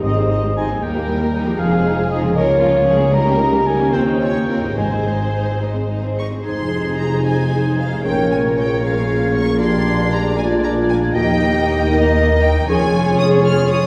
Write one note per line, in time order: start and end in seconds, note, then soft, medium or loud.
0.00 0.78 G#1 medium
0.00 0.76 G#2 soft
0.00 0.78 G#2 soft
0.00 0.78 G#2 medium
0.00 0.78 C4 soft
0.00 0.15 C4 soft
0.00 0.72 D#4 soft
0.00 0.16 D#4 soft
0.00 0.82 G#4 soft
0.00 0.52 D#5 medium
0.00 0.16 D#5 soft
0.16 0.30 G#3 soft
0.16 0.28 C4 soft
0.16 0.30 C5 soft
0.29 0.42 C4 soft
0.29 0.43 D#4 soft
0.29 0.43 D#5 soft
0.43 0.56 G#3 soft
0.43 0.55 C4 soft
0.43 0.56 C5 soft
0.56 0.68 C4 soft
0.56 0.68 D#4 soft
0.56 0.69 D#5 soft
0.56 0.84 G#5 medium
0.65 1.53 D#3 soft
0.69 0.82 G#3 soft
0.69 1.55 A#3 soft
0.69 0.82 C4 soft
0.69 0.83 C5 soft
0.74 1.49 D#4 soft
0.78 1.60 D#2 soft
0.78 0.94 G3 soft
0.78 0.94 D#4 soft
0.78 0.94 G4 soft
0.78 1.60 A#4 soft
0.82 1.60 D#2 soft
0.82 1.56 A#4 medium
0.82 1.33 G5 medium
0.96 1.09 A#3 soft
0.96 1.09 G4 soft
0.96 1.09 A#4 soft
1.08 1.21 G3 soft
1.08 1.21 D#4 soft
1.08 1.21 G4 soft
1.21 1.34 A#3 soft
1.21 1.34 G4 soft
1.21 1.34 A#4 soft
1.33 1.46 G3 soft
1.33 1.46 D#4 soft
1.33 1.46 G4 soft
1.33 1.60 G5 medium
1.42 3.06 F3 medium
1.46 2.31 G#3 soft
1.46 1.60 A#3 soft
1.46 1.60 G4 soft
1.46 1.60 A#4 soft
1.51 2.33 D#4 soft
1.55 2.30 F4 soft
1.55 2.36 G#4 medium
1.55 2.10 F5 medium
1.59 2.35 F1 medium
1.59 2.35 F2 medium
1.59 1.72 F3 soft
1.59 1.71 D#4 soft
1.59 1.72 G#4 soft
1.73 1.86 G#3 soft
1.73 1.86 C4 soft
1.73 1.86 F4 soft
1.85 1.98 F3 soft
1.85 1.98 D#4 soft
1.85 1.98 G#4 soft
1.97 2.11 G#3 soft
1.97 2.11 C4 soft
1.97 2.10 F4 soft
2.10 2.22 F3 soft
2.10 2.23 D#4 soft
2.10 2.22 G#4 soft
2.10 2.38 D#5 medium
2.18 2.94 C#3 medium
2.18 2.35 G#3 soft
2.18 2.35 C4 soft
2.23 2.98 A#3 soft
2.23 2.36 F4 soft
2.27 3.78 C#4 soft
2.32 2.47 F3 soft
2.32 3.13 F4 soft
2.32 2.48 A#4 soft
2.36 3.93 C#2 medium
2.36 2.48 C#4 soft
2.36 2.61 A#4 medium
2.36 3.15 C#5 medium
2.48 2.61 A#3 soft
2.48 2.61 F4 soft
2.60 2.74 F3 soft
2.60 2.74 C#4 soft
2.60 2.86 F4 medium
2.60 2.73 A#4 soft
2.73 2.87 A#3 soft
2.73 2.87 F4 soft
2.85 2.98 F3 soft
2.85 2.98 C#4 soft
2.85 3.12 G#4 medium
2.85 2.99 A#4 soft
2.95 3.86 C#3 medium
2.95 3.12 A#3 soft
2.99 4.72 A#3 soft
2.99 3.13 F4 soft
3.04 4.67 D#4 soft
3.08 3.25 G3 medium
3.08 3.25 D#4 medium
3.08 4.77 G4 soft
3.08 3.92 A#4 medium
3.13 3.25 A#4 medium
3.13 3.68 A#5 medium
3.25 3.39 A#3 soft
3.25 3.39 C#4 soft
3.25 3.39 G4 medium
3.38 3.52 G3 soft
3.38 3.52 D#4 soft
3.38 3.53 A#4 soft
3.51 3.65 A#3 soft
3.51 3.65 C#4 soft
3.51 3.66 G4 soft
3.65 3.78 G3 soft
3.65 3.78 D#4 soft
3.65 3.79 A#4 soft
3.65 3.95 G#5 medium
3.75 4.70 D#3 soft
3.75 3.92 A#3 soft
3.79 3.93 C#4 soft
3.79 4.72 C#4 soft
3.79 3.93 G4 soft
3.84 4.75 F4 soft
3.88 4.05 C4 soft
3.88 4.05 F4 soft
3.88 4.71 C5 soft
3.88 4.00 C5 medium
3.93 4.77 D#2 medium
3.93 4.06 C#5 soft
3.93 4.77 G5 medium
4.06 4.20 C#4 soft
4.06 4.20 D#4 soft
4.06 4.20 C5 soft
4.20 4.34 C4 soft
4.20 4.34 F4 soft
4.20 4.34 C#5 soft
4.20 4.48 C#5 medium
4.34 4.48 C#4 soft
4.34 4.48 D#4 soft
4.34 4.49 C5 soft
4.48 4.61 C4 soft
4.48 4.61 F4 soft
4.48 4.76 A#4 soft
4.48 4.62 C#5 soft
4.59 6.38 G#2 soft
4.59 4.76 C#4 soft
4.59 4.76 D#4 soft
4.63 6.71 C4 soft
4.63 4.77 C5 soft
4.68 6.84 D#4 soft
4.73 7.11 C5 soft
4.77 6.21 G#1 soft
4.77 5.57 G#2 medium
4.77 6.21 G#2 soft
4.77 4.90 G#3 soft
4.77 4.90 D#4 soft
4.77 6.03 C5 soft
4.77 4.91 D#5 soft
4.77 5.60 G#5 medium
4.91 5.05 C4 soft
4.91 5.06 G#4 soft
4.91 5.06 C5 soft
5.05 5.19 G#3 soft
5.05 5.19 D#4 soft
5.05 5.20 D#5 soft
5.20 5.33 C4 soft
5.20 5.34 G#4 soft
5.20 5.34 C5 soft
5.34 5.47 G#3 soft
5.34 5.47 D#4 soft
5.34 5.47 D#5 soft
5.48 5.62 C4 soft
5.48 5.62 G#4 soft
5.48 5.63 C5 soft
5.61 5.75 G#3 soft
5.61 5.75 D#4 soft
5.61 5.76 D#5 soft
5.75 5.89 C4 soft
5.75 5.89 G#4 soft
5.75 5.90 C5 soft
5.88 6.02 G#3 soft
5.88 6.02 D#4 soft
5.88 6.03 D#5 soft
6.02 6.17 C4 soft
6.02 6.17 G#4 soft
6.02 6.18 C5 soft
6.18 6.31 G#3 soft
6.18 6.31 D#4 soft
6.18 6.32 D#5 soft
6.18 6.27 C#6 soft
6.31 6.45 C4 soft
6.31 6.45 G#4 soft
6.31 6.46 C5 soft
6.44 8.01 F1 soft
6.44 8.00 F2 soft
6.44 8.07 F2 soft
6.44 9.56 G#3 soft
6.44 7.20 D#4 soft
6.44 8.01 D#4 soft
6.44 8.00 G#4 medium
6.44 8.01 G#4 soft
6.44 8.01 C5 soft
6.44 6.97 C6 medium
6.44 7.20 G#6 soft
6.58 7.91 C3 soft
6.72 7.77 C4 soft
6.85 7.64 D#4 soft
6.99 8.56 G#4 soft
6.99 7.25 A#5 medium
7.12 7.51 C5 soft
7.25 8.03 D#4 soft
7.25 8.07 D#5 soft
7.25 7.78 G#5 medium
7.25 8.03 G#6 soft
7.39 8.95 G#5 soft
7.52 8.07 C5 soft
7.65 8.07 D#4 soft
7.79 8.07 C4 soft
7.79 8.05 F5 medium
7.92 8.07 C3 soft
8.03 11.16 A#1 soft
8.03 11.15 A#2 soft
8.03 9.59 A#2 soft
8.03 8.81 C#4 soft
8.03 11.12 F4 soft
8.03 11.11 A#4 soft
8.03 8.83 A#4 soft
8.03 9.56 C#5 soft
8.03 8.31 G5 medium
8.03 8.81 G#6 soft
8.18 9.46 F3 soft
8.31 8.39 G#5 medium
8.44 9.21 C#4 soft
8.57 10.12 G#4 soft
8.57 8.83 G5 medium
8.70 9.08 A#4 soft
8.82 9.62 C#4 soft
8.82 9.59 G#4 medium
8.82 9.62 C#5 soft
8.82 9.34 F5 medium
8.82 9.58 G#6 soft
8.96 10.50 G#5 soft
9.09 10.24 A#4 soft
9.22 9.62 C#4 soft
9.34 9.85 A#3 soft
9.34 9.60 C#6 medium
9.48 9.73 F3 soft
9.60 11.17 A#2 medium
9.60 11.12 G#3 soft
9.60 10.37 D4 soft
9.60 10.36 G4 medium
9.60 11.11 D5 medium
9.60 10.11 C6 medium
9.60 10.36 G#6 soft
9.74 11.02 F3 soft
9.87 10.89 A#3 soft
10.00 10.76 D4 soft
10.12 11.18 G#4 soft
10.12 10.38 A#5 medium
10.26 10.63 A#4 soft
10.37 11.17 D4 medium
10.37 11.14 F4 medium
10.37 11.17 D5 soft
10.37 10.46 G#5 medium
10.37 11.16 G#6 medium
10.51 11.17 G#5 soft
10.63 11.53 A#4 soft
10.63 10.71 A#5 medium
10.77 11.17 D4 soft
10.90 11.28 A#3 soft
10.90 10.98 G#5 medium
11.03 11.18 F3 soft
11.15 12.65 D#2 medium
11.15 12.70 D#3 medium
11.15 12.64 A#3 medium
11.15 11.91 D#4 medium
11.15 12.65 D#4 medium
11.15 11.91 G4 medium
11.15 12.64 A#4 medium
11.15 12.64 D#5 medium
11.15 11.90 G5 medium
11.15 11.91 A#6 medium
11.29 12.41 A#3 soft
11.42 11.66 D#4 soft
11.54 12.17 A#4 soft
11.67 12.28 D#4 soft
11.80 12.04 D#5 soft
11.90 12.66 D#4 medium
11.90 12.66 A#4 medium
11.90 12.43 D#5 medium
11.90 12.70 A#5 medium
11.90 12.66 A#6 medium
12.05 12.70 D#5 soft
12.18 12.70 A#4 medium
12.30 12.54 D#4 soft
12.43 12.70 A#3 soft
12.43 12.68 G5 medium
12.55 12.70 D#4 soft
12.68 13.87 F1 medium
12.68 13.87 F2 medium
12.68 13.87 F3 medium
12.68 13.87 C#4 medium
12.68 13.87 F4 medium
12.68 13.87 G#4 medium
12.68 13.87 C#5 medium
12.68 13.18 G#5 medium
12.68 13.87 C#6 medium
12.81 13.87 F4 soft
12.93 13.82 G#3 soft
13.06 13.31 G#4 soft
13.19 13.87 C#5 medium
13.19 13.27 D#6 medium
13.32 13.70 G#4 soft
13.44 13.87 G#5 medium
13.44 13.70 F6 medium
13.58 13.87 C#6 soft
13.70 13.87 G#4 soft
13.70 13.87 D#6 medium